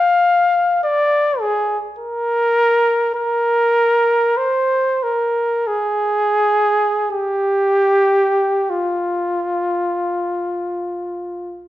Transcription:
0.00 0.83 F5 medium
0.84 1.42 D5 medium
1.40 1.78 G#4 medium
1.99 3.10 A#4 medium
3.15 4.39 A#4 medium
4.37 5.05 C5 medium
5.03 5.69 A#4 medium
5.67 7.11 G#4 medium
7.11 8.72 G4 medium
8.70 11.68 F4 medium

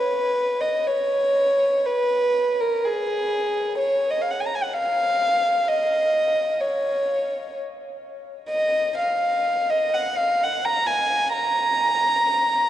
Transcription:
0.00 0.61 B4 medium
0.61 0.88 D#5 medium
0.87 1.87 C#5 medium
1.86 2.59 B4 medium
2.60 2.84 A#4 medium
2.85 3.80 G#4 medium
3.78 4.07 C#5 medium
4.10 4.23 D#5 medium
4.21 4.32 F5 soft
4.31 4.40 F#5 soft
4.40 4.47 G#5 soft
4.47 4.55 A#5 soft
4.55 4.64 G#5 medium
4.63 4.74 F#5 soft
4.73 5.69 F5 medium
5.68 6.61 D#5 medium
6.61 7.56 C#5 medium
8.50 8.94 D#5 medium
8.99 9.70 F5 medium
9.70 9.94 D#5 medium
9.94 10.18 F#5 medium
10.17 10.41 F5 medium
10.44 10.66 F#5 medium
10.65 10.89 A#5 medium
10.87 11.35 G#5 medium
11.33 12.70 A#5 medium

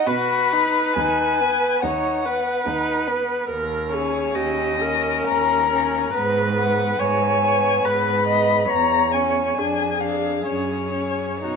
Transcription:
0.07 0.84 B2 medium
0.07 0.54 F#4 soft
0.07 1.83 B4 medium
0.07 0.96 B5 medium
0.53 0.97 D#4 soft
0.96 1.70 D#2 medium
0.96 1.42 D#4 soft
0.96 1.84 G#5 medium
1.40 1.85 B3 soft
1.82 2.53 D#2 medium
1.82 2.27 D#4 soft
1.82 2.27 C#5 medium
1.82 3.06 F#5 medium
2.25 2.66 B3 soft
2.25 3.49 B4 medium
2.66 3.37 D#2 medium
2.66 3.09 D#4 soft
3.07 3.49 B3 soft
3.49 4.25 D#2 medium
3.49 3.95 A#4 medium
3.91 4.79 C#4 soft
3.91 4.36 G#4 medium
3.91 4.37 C#5 medium
4.35 5.17 D#2 medium
4.35 4.83 G4 medium
4.35 5.27 D#5 medium
4.80 5.70 C#4 soft
4.80 6.14 A#4 medium
5.28 6.04 D#2 medium
5.28 6.13 A#5 medium
5.73 6.14 C#4 soft
6.14 6.89 G#2 medium
6.14 6.55 B3 soft
6.14 7.01 B4 medium
6.56 7.40 B3 soft
6.56 7.01 F#5 medium
6.99 7.75 G#2 soft
6.99 7.87 C#5 medium
6.99 7.87 G#5 medium
7.41 8.26 B3 soft
7.84 8.60 G#2 soft
7.84 8.27 B4 soft
7.84 8.71 B5 medium
8.27 8.69 B3 soft
8.27 8.69 D#5 medium
8.70 9.48 E2 medium
8.70 9.60 C#5 medium
8.70 9.14 A#5 medium
9.12 9.57 C#4 soft
9.12 10.02 G#5 medium
9.57 10.36 F2 soft
9.57 10.00 D4 soft
9.57 11.46 G#4 soft
10.00 10.45 D4 soft
10.00 10.46 F5 medium
10.46 11.32 F#2 soft
10.46 10.93 C#4 soft
10.46 11.41 C#5 medium
10.93 11.42 C#4 soft
11.42 11.56 B2 soft
11.42 11.56 D#4 soft
11.42 11.56 F#4 soft
11.42 11.56 C#5 medium

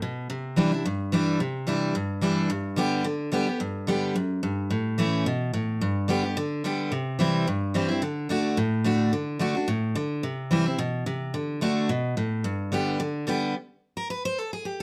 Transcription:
0.02 0.28 B2 medium
0.30 0.82 C3 medium
0.56 0.71 E3 medium
0.56 0.71 G3 medium
0.56 0.72 D4 medium
0.56 0.71 E4 medium
0.72 0.85 D4 medium
0.72 0.84 E4 medium
0.85 1.38 G2 medium
1.12 1.39 E3 medium
1.12 1.39 G3 medium
1.12 1.39 D4 loud
1.12 1.40 E4 loud
1.40 1.93 C3 medium
1.67 1.93 E3 medium
1.67 1.94 G3 medium
1.67 1.94 D4 medium
1.67 1.94 E4 medium
1.95 2.48 G2 medium
2.21 2.48 E3 medium
2.21 2.49 G3 medium
2.21 2.49 D4 medium
2.21 2.49 E4 loud
2.50 3.03 G2 medium
2.76 3.03 D3 medium
2.76 3.04 G3 loud
2.76 3.04 B3 loud
2.76 3.05 G4 loud
3.04 3.30 D3 loud
3.32 3.46 D3 medium
3.32 3.47 G3 medium
3.32 3.47 B3 loud
3.32 3.45 G4 loud
3.47 3.61 B3 soft
3.47 3.60 G4 medium
3.60 4.13 G2 medium
3.87 4.14 D3 medium
3.87 4.14 G3 medium
3.87 4.15 B3 medium
3.87 4.15 G4 loud
4.16 4.42 F#2 medium
4.43 4.69 G2 medium
4.70 5.23 A2 medium
4.98 5.24 E3 medium
4.98 5.25 A3 medium
4.98 5.25 C#4 loud
4.98 5.25 E4 loud
5.26 5.53 B2 loud
5.53 5.80 A2 medium
5.81 6.34 G2 medium
6.08 6.23 D3 medium
6.08 6.23 G3 medium
6.08 6.23 B3 loud
6.08 6.22 G4 loud
6.24 6.37 B3 soft
6.24 6.36 G4 medium
6.37 6.63 D3 loud
6.64 6.90 D3 medium
6.64 6.91 G3 medium
6.64 6.91 B3 medium
6.64 6.91 G4 medium
6.92 7.44 C3 medium
7.19 7.45 E3 medium
7.19 7.46 G3 loud
7.19 7.46 C4 medium
7.19 7.46 E4 loud
7.47 8.00 G2 loud
7.74 7.89 E3 medium
7.74 7.89 G3 medium
7.74 7.89 C4 medium
7.74 7.87 E4 medium
7.88 8.02 C4 medium
7.88 8.01 E4 medium
8.02 8.28 D3 loud
8.29 8.56 D3 medium
8.29 8.56 A3 medium
8.29 8.57 D4 loud
8.29 8.57 F#4 loud
8.57 9.10 A2 loud
8.84 9.11 D3 medium
8.84 9.12 A3 medium
8.84 9.12 D4 medium
8.84 9.12 F#4 medium
9.13 9.38 D3 medium
9.39 9.54 D3 medium
9.39 9.55 A3 medium
9.39 9.55 D4 medium
9.39 9.53 F#4 loud
9.55 9.68 D4 medium
9.55 9.67 F#4 medium
9.68 9.94 A2 medium
9.95 10.22 D3 medium
10.23 10.76 C3 medium
10.51 10.65 E3 medium
10.51 10.65 G3 medium
10.51 10.66 C4 medium
10.51 10.64 E4 loud
10.66 10.79 C4 medium
10.66 10.78 E4 medium
10.78 11.05 B2 loud
11.06 11.33 C3 medium
11.34 11.60 D3 medium
11.61 11.88 D3 medium
11.61 11.88 A3 loud
11.61 11.89 D4 loud
11.61 11.89 F#4 medium
11.89 12.16 B2 medium
12.17 12.43 A2 medium
12.44 12.97 G2 medium
12.72 12.98 D3 medium
12.72 12.99 G3 medium
12.72 12.99 B3 medium
12.72 12.99 G4 loud
13.00 13.26 D3 loud
13.27 13.53 D3 medium
13.27 13.54 G3 medium
13.27 13.54 B3 loud
13.27 13.54 G4 loud
13.97 14.10 A#4 medium
14.10 14.24 B4 medium
14.25 14.38 C5 loud
14.38 14.52 A4 medium
14.53 14.65 G#4 medium
14.65 14.80 G4 medium

